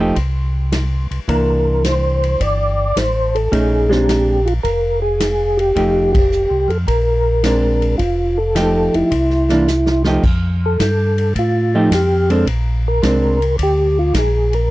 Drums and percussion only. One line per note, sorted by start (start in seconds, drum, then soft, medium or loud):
0.16 kick soft
0.16 ride medium
0.72 snare medium
0.72 hi-hat pedal medium
0.72 ride medium
1.11 ride soft
1.28 kick soft
1.28 ride medium
1.84 snare medium
1.84 hi-hat pedal soft
1.84 ride medium
2.23 ride soft
2.40 kick soft
2.40 ride medium
2.97 snare medium
2.97 hi-hat pedal medium
2.97 ride medium
3.35 ride soft
3.53 kick soft
3.53 ride medium
3.92 snare medium
4.09 snare medium
4.09 hi-hat pedal soft
4.09 ride medium
4.47 ride soft
4.64 kick soft
4.64 ride medium
5.20 snare medium
5.20 hi-hat pedal medium
5.20 ride medium
5.59 ride soft
5.76 kick soft
5.76 ride medium
6.15 kick medium
6.15 ride medium
6.32 hi-hat pedal medium
6.70 ride soft
6.88 kick soft
6.88 ride medium
7.43 snare medium
7.43 hi-hat pedal medium
7.43 ride medium
7.82 ride soft
7.99 kick soft
7.99 ride medium
8.55 snare medium
8.55 hi-hat pedal medium
8.55 ride medium
8.94 ride soft
9.12 kick soft
9.12 ride medium
9.30 snare soft
9.49 snare soft
9.49 ride soft
9.68 snare soft
9.68 hi-hat pedal medium
9.86 snare medium
10.04 snare medium
10.23 kick medium
10.23 crash medium
10.79 kick soft
10.79 snare medium
10.79 hi-hat pedal medium
10.79 ride medium
11.18 ride soft
11.35 kick soft
11.35 ride medium
11.91 kick soft
11.91 snare medium
11.91 hi-hat pedal medium
11.91 ride medium
12.30 ride soft
12.47 kick soft
12.47 ride medium
13.03 kick soft
13.03 snare medium
13.03 hi-hat pedal medium
13.03 ride medium
13.42 ride soft
13.59 kick soft
13.59 ride medium
14.14 kick soft
14.14 snare medium
14.14 hi-hat pedal medium
14.14 ride medium
14.53 ride soft